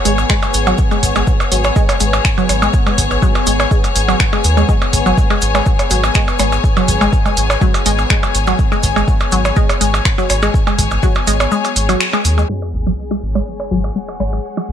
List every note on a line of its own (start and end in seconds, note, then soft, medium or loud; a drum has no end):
0.00 12.50 B3 medium
0.00 12.48 G#4 medium
0.00 12.49 C#5 medium
0.00 12.49 G#5 medium
0.05 0.25 G#1 loud
0.05 0.07 G#3 loud
0.05 open hi-hat medium
0.05 cabasa medium
0.18 cabasa soft
0.18 percussion blips soft
0.30 0.32 G#3 medium
0.30 finger snap loud
0.30 kick loud
0.30 cabasa medium
0.43 cabasa soft
0.43 percussion blips medium
0.54 0.73 G#1 medium
0.54 open hi-hat medium
0.54 cabasa medium
0.67 0.70 F#3 loud
0.67 cabasa soft
0.67 percussion blips medium
0.78 kick loud
0.78 cabasa medium
0.91 0.93 G#3 loud
0.91 cabasa soft
0.91 percussion blips soft
1.03 1.22 G#1 medium
1.03 kick medium
1.03 open hi-hat medium
1.03 cabasa loud
1.16 1.18 G#3 medium
1.16 cabasa soft
1.16 percussion blips medium
1.27 kick loud
1.27 cabasa medium
1.40 cabasa soft
1.40 percussion blips medium
1.52 1.71 G#1 medium
1.52 1.55 F#3 loud
1.52 open hi-hat medium
1.52 cabasa medium
1.64 percussion blips medium
1.64 cabasa soft
1.64 percussion blips soft
1.76 1.78 G#3 loud
1.76 kick loud
1.76 cabasa medium
1.89 open hi-hat soft
1.89 percussion blips medium
1.89 cabasa soft
1.89 percussion blips medium
2.00 2.20 G#1 loud
2.00 2.03 G#3 medium
2.00 open hi-hat medium
2.00 cabasa medium
2.13 cabasa soft
2.13 percussion blips medium
2.25 finger snap loud
2.25 kick loud
2.25 cabasa medium
2.38 2.41 F#3 loud
2.38 cabasa soft
2.38 percussion blips soft
2.49 2.69 G#1 medium
2.49 open hi-hat medium
2.49 percussion blips medium
2.49 cabasa medium
2.62 2.64 G#3 loud
2.62 cabasa soft
2.62 percussion blips medium
2.74 kick loud
2.74 cabasa medium
2.87 2.89 G#3 medium
2.87 cabasa soft
2.87 percussion blips medium
2.98 3.17 G#1 medium
2.98 kick medium
2.98 open hi-hat loud
2.98 cabasa loud
3.11 cabasa soft
3.11 percussion blips soft
3.22 3.26 F#3 loud
3.22 kick loud
3.22 cabasa soft
3.35 cabasa soft
3.35 percussion blips medium
3.46 3.66 G#1 medium
3.46 3.49 G#3 medium
3.46 open hi-hat medium
3.46 cabasa medium
3.60 percussion blips medium
3.60 cabasa soft
3.60 percussion blips medium
3.71 3.73 G#3 medium
3.71 kick loud
3.71 cabasa medium
3.84 open hi-hat soft
3.84 cabasa soft
3.84 percussion blips soft
3.96 4.15 G#1 loud
3.96 open hi-hat medium
3.96 cabasa loud
4.08 4.12 F#3 loud
4.08 cabasa soft
4.08 percussion blips medium
4.20 finger snap loud
4.20 kick loud
4.20 cabasa medium
4.33 4.35 G#3 loud
4.33 cabasa soft
4.33 percussion blips medium
4.44 4.64 D#2 medium
4.44 open hi-hat medium
4.44 cabasa medium
4.57 4.59 G#3 medium
4.57 cabasa soft
4.57 percussion blips soft
4.69 4.71 G#3 medium
4.69 kick loud
4.69 cabasa soft
4.81 cabasa soft
4.81 percussion blips medium
4.93 5.12 G#1 loud
4.93 kick medium
4.93 open hi-hat medium
4.93 cabasa medium
5.06 5.09 F#3 loud
5.06 cabasa soft
5.06 percussion blips soft
5.18 kick loud
5.18 cabasa medium
5.30 5.32 G#3 loud
5.30 cabasa soft
5.30 percussion blips medium
5.41 5.61 G#1 medium
5.41 open hi-hat medium
5.41 cabasa medium
5.55 5.57 G#3 medium
5.55 percussion blips medium
5.55 cabasa soft
5.55 percussion blips medium
5.66 kick loud
5.66 cabasa soft
5.79 open hi-hat soft
5.79 percussion blips medium
5.79 cabasa soft
5.79 percussion blips soft
5.90 6.10 G#1 loud
5.90 5.94 F#3 loud
5.90 open hi-hat medium
5.90 cabasa medium
6.04 cabasa soft
6.04 percussion blips medium
6.14 6.17 G#3 loud
6.14 finger snap loud
6.14 kick loud
6.14 cabasa medium
6.28 cabasa soft
6.28 percussion blips medium
6.39 6.59 G#1 medium
6.39 6.42 G#3 medium
6.39 open hi-hat medium
6.39 percussion blips medium
6.39 cabasa medium
6.52 cabasa soft
6.52 percussion blips soft
6.64 kick loud
6.64 cabasa medium
6.77 6.80 F#3 loud
6.77 cabasa soft
6.77 percussion blips medium
6.88 7.08 G#1 loud
6.88 kick medium
6.88 open hi-hat medium
6.88 cabasa medium
7.01 7.03 G#3 loud
7.01 cabasa soft
7.01 percussion blips medium
7.13 kick loud
7.13 cabasa medium
7.25 7.27 G#3 medium
7.25 cabasa soft
7.25 percussion blips soft
7.37 7.56 G#1 medium
7.37 open hi-hat medium
7.37 cabasa medium
7.50 percussion blips medium
7.50 cabasa soft
7.50 percussion blips medium
7.61 7.65 F#3 loud
7.61 kick loud
7.61 cabasa soft
7.74 open hi-hat soft
7.74 cabasa soft
7.74 percussion blips medium
7.86 8.05 G#1 loud
7.86 7.88 G#3 loud
7.86 open hi-hat medium
7.86 cabasa medium
7.98 cabasa soft
7.98 percussion blips soft
8.10 8.12 G#3 medium
8.10 finger snap medium
8.10 kick loud
8.10 cabasa medium
8.23 cabasa soft
8.23 percussion blips medium
8.35 8.54 G#1 medium
8.35 open hi-hat medium
8.35 cabasa medium
8.47 8.51 F#3 loud
8.47 cabasa soft
8.47 percussion blips medium
8.59 kick loud
8.59 cabasa soft
8.72 8.74 G#3 loud
8.72 cabasa soft
8.72 percussion blips soft
8.83 9.03 G#1 loud
8.83 kick medium
8.83 open hi-hat medium
8.83 cabasa medium
8.96 8.98 G#3 medium
8.96 cabasa soft
8.96 percussion blips medium
9.08 kick loud
9.08 cabasa soft
9.20 cabasa soft
9.20 percussion blips medium
9.32 9.52 G#1 medium
9.32 9.36 F#3 loud
9.32 open hi-hat medium
9.32 cabasa medium
9.45 percussion blips medium
9.45 cabasa soft
9.45 percussion blips soft
9.56 9.59 G#3 loud
9.56 kick loud
9.56 cabasa medium
9.69 open hi-hat soft
9.69 percussion blips medium
9.69 cabasa soft
9.69 percussion blips medium
9.81 10.00 G#1 loud
9.81 9.83 G#3 medium
9.81 open hi-hat medium
9.81 cabasa medium
9.94 cabasa soft
9.94 percussion blips medium
10.05 finger snap loud
10.05 kick loud
10.05 cabasa soft
10.18 10.21 F#3 loud
10.18 cabasa soft
10.18 percussion blips soft
10.30 10.49 G#1 medium
10.30 open hi-hat medium
10.30 percussion blips medium
10.30 cabasa medium
10.42 10.45 G#3 loud
10.42 cabasa soft
10.42 percussion blips medium
10.54 kick loud
10.54 cabasa medium
10.67 10.69 G#3 medium
10.67 cabasa soft
10.67 percussion blips medium
10.79 10.98 G#1 medium
10.79 kick medium
10.79 open hi-hat medium
10.79 cabasa medium
10.91 cabasa soft
10.91 percussion blips soft
11.03 11.06 F#3 loud
11.03 kick loud
11.03 cabasa soft
11.15 cabasa soft
11.15 percussion blips medium
11.27 11.47 G#1 medium
11.27 11.29 G#3 medium
11.27 open hi-hat medium
11.27 cabasa medium
11.40 percussion blips medium
11.40 cabasa soft
11.40 percussion blips medium
11.51 11.54 G#3 medium
11.51 cabasa soft
11.65 open hi-hat soft
11.65 cabasa soft
11.65 percussion blips soft
11.76 11.95 G#1 loud
11.76 open hi-hat medium
11.76 cabasa medium
11.89 11.92 F#3 loud
11.89 open hi-hat soft
11.89 cabasa soft
11.89 percussion blips medium
12.00 finger snap loud
12.00 cabasa soft
12.13 12.15 G#3 loud
12.13 cabasa soft
12.13 percussion blips medium
12.25 12.44 D#2 medium
12.25 open hi-hat medium
12.25 cabasa medium
12.38 12.40 G#3 medium
12.38 cabasa soft
12.38 percussion blips soft
12.49 14.72 G#3 medium
12.49 12.51 G#3 medium
12.49 14.72 G#4 medium
12.49 sub drop medium
12.62 percussion blips medium
12.74 12.93 G#1 medium
12.87 12.90 F#3 loud
12.87 percussion blips soft
13.11 13.13 G#3 medium
13.11 percussion blips medium
13.23 13.42 G#1 medium
13.23 14.72 C#5 medium
13.35 13.37 G#3 medium
13.35 percussion blips medium
13.60 percussion blips medium
13.60 percussion blips soft
13.71 13.91 G#1 loud
13.71 13.75 F#3 loud
13.79 14.72 F#5 medium
13.84 percussion blips medium
13.96 13.98 G#3 medium
14.09 percussion blips medium
14.20 14.39 G#1 medium
14.20 14.22 G#3 medium
14.20 percussion blips medium
14.33 percussion blips soft
14.57 14.60 F#3 medium
14.57 percussion blips medium
14.69 14.72 G#1 medium